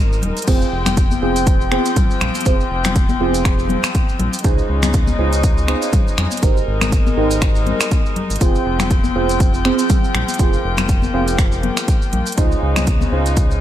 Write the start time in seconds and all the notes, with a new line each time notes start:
Already playing: G#1 G#3 D#4 G4 A#4 C5
0.13 maracas
0.22 D#1, closed hi-hat, low conga
0.37 closed hi-hat, maracas
0.42 closed hi-hat
0.47 F1 F3 C4 F4 G#4 C5 G5, kick, closed hi-hat, crash, maracas
0.62 maracas
0.72 F1
0.86 finger snap, closed hi-hat, high conga, low conga, maracas
0.97 kick, closed hi-hat, maracas
1.11 high conga, maracas
1.22 F1 C4 F4 G#4 C5
1.36 closed hi-hat, maracas
1.47 kick, closed hi-hat, maracas
1.61 maracas
1.72 C4 F4 G#4 C5, finger snap, closed hi-hat, high conga
1.86 closed hi-hat, maracas
1.96 kick, closed hi-hat, low conga, maracas
2.11 maracas
2.21 A#1, finger snap, closed hi-hat, low conga
2.35 closed hi-hat, high conga, maracas
2.41 closed hi-hat
2.46 F1 C4 F4 G#4 C5, kick, closed hi-hat, maracas
2.60 maracas
2.71 F1
2.84 finger snap, closed hi-hat, high conga, low conga, maracas
2.96 kick, closed hi-hat, maracas
3.09 high conga, maracas
3.20 F1 C4 F4 G#4 C5
3.34 closed hi-hat, maracas
3.45 finger snap, kick, closed hi-hat, maracas
3.59 maracas
3.69 closed hi-hat, high conga, low conga
3.84 finger snap, closed hi-hat, maracas
3.95 kick, closed hi-hat, high conga, maracas
4.09 maracas
4.19 A#1, closed hi-hat, low conga
4.33 closed hi-hat, maracas
4.39 closed hi-hat
4.44 C#2 C#3 G#3 D#4 F4 G#4 C5, kick, closed hi-hat, maracas
4.58 maracas
4.69 C#2
4.83 finger snap, closed hi-hat, high conga, low conga, maracas
4.93 kick, closed hi-hat, maracas
5.07 high conga, maracas
5.19 C#2 D#4 F4 G#4 C5
5.33 closed hi-hat, maracas
5.43 kick, closed hi-hat, maracas
5.58 maracas
5.68 D#4 F4 G#4 C5, finger snap, closed hi-hat, high conga
5.82 closed hi-hat, maracas
5.93 kick, closed hi-hat, low conga, maracas
6.08 maracas
6.18 F2, finger snap, closed hi-hat, low conga
6.31 closed hi-hat, high conga, maracas
6.37 closed hi-hat
6.42 G#1 G#3 D#4 G4 A#4 C5, kick, closed hi-hat, maracas
6.57 maracas
6.67 G#1
6.81 finger snap, closed hi-hat, high conga, low conga, maracas
6.92 kick, closed hi-hat, maracas
7.07 high conga, maracas
7.17 G#1 D#4 G4 A#4 C5
7.31 closed hi-hat, maracas
7.42 finger snap, kick, closed hi-hat, maracas
7.55 maracas
7.66 closed hi-hat, high conga, low conga
7.81 finger snap, closed hi-hat, maracas
7.91 kick, closed hi-hat, high conga, maracas
8.06 maracas
8.16 closed hi-hat, low conga
8.30 G#1, closed hi-hat, maracas
8.36 closed hi-hat
8.41 F1 F3 C4 F4 G#4 C5 G5, kick, closed hi-hat, maracas
8.55 maracas
8.66 F1
8.79 finger snap, closed hi-hat, high conga, low conga, maracas
8.90 kick, closed hi-hat, maracas
9.04 high conga, maracas
9.15 F1 C4 F4 G#4 C5
9.29 closed hi-hat, maracas
9.40 kick, closed hi-hat, maracas
9.54 maracas
9.65 C4 F4 G#4 C5, finger snap, closed hi-hat, high conga
9.79 closed hi-hat, maracas
9.90 kick, closed hi-hat, low conga, maracas
10.04 maracas
10.15 A#1, finger snap, closed hi-hat, low conga
10.28 closed hi-hat, high conga, maracas
10.34 closed hi-hat
10.39 F1 A#3 C4 F4 G#4 C5, kick, closed hi-hat, maracas
10.53 maracas
10.64 F1
10.77 finger snap, closed hi-hat, high conga, low conga, maracas
10.89 kick, closed hi-hat, maracas
11.02 high conga, maracas
11.14 F1 C4 F4 G#4 C5
11.28 closed hi-hat, maracas
11.39 finger snap, kick, closed hi-hat, maracas
11.52 maracas
11.63 closed hi-hat, high conga, low conga
11.77 finger snap, closed hi-hat, maracas
11.88 kick, closed hi-hat, maracas
12.02 maracas
12.13 A#1, closed hi-hat, low conga
12.26 closed hi-hat, maracas
12.32 closed hi-hat
12.37 C#2 C#3 G#3 D#4 F4 G#4 C5, kick, closed hi-hat, maracas
12.52 maracas
12.62 C#2
12.76 finger snap, closed hi-hat, high conga, low conga, maracas
12.87 kick, closed hi-hat, maracas
13.01 high conga, maracas
13.12 C#2 D#4 F4 G#4 C5
13.26 closed hi-hat, maracas
13.37 kick, closed hi-hat, maracas
13.51 maracas